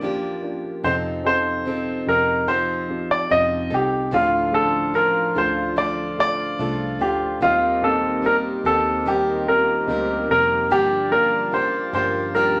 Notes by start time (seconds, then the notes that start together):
Already playing: A#3 D4 F4 G4 D5
0.01 F1 F3 A#3 D4 F4 G4
0.43 G1 A#3 D4 F4 A#4
0.84 F1 C3 F3 C4 D#4 F4 A4 C5
1.24 C4 D#4 F4 A4 C5
1.65 F3 C4 D#4 F4 A4
2.06 F1 C4 D#4 F4 G4 A#4
2.47 F3 C4 D#4 F4 A4 C5
2.89 C4 D#4 F4 G4
3.11 D5
3.30 F1 F3 C4 D#4 F4 A4 C5 D#5
3.70 C2 C4 D#4 F4 G4 A4 C5
4.11 D2 A2 D3 F3 A3 D4 F4 A4
4.52 A3 D4 F4 A4
4.94 F3 D4 F4 A#4
5.35 D2 A3 D4 F4 A4 C5
5.76 D3 F3 A3 D4 F4 A4 C5 D5
6.17 A3 D4 F4 A4 D5
6.58 C2 F3 A3 D4 F4 A4
6.99 D2 A3 D4 F4 G4 A4 C5
7.40 D#2 D#3 G3 A#3 C4 D#4 F4 G4
7.81 A#3 C4 D#4 G4 A4
8.22 G3 A#3 C4 D#4 G4 A#4
8.64 D#2 A#3 C4 D#4 G4 A4
9.05 D#3 G3 A#3 C4 D#4 G4 A#4
9.46 A#3 C4 D#4 F4 A#4
9.86 D2 G3 A#3 C4 D#4 G4
9.91 A#4
10.28 F1 A#3 C4 D#4 A#4
10.70 G1 G2 D3 F3 G3 A#3 D4 F4 G4 A5
11.10 A#3 D4 F4 G4 A#4
11.51 F3 A#3 D4 F4 G4 C5
11.93 G1 F3 A#3 D4 F4 G4 A#4 C5
12.33 G2 D3 F3 A#3 D4 F4 G4 A#4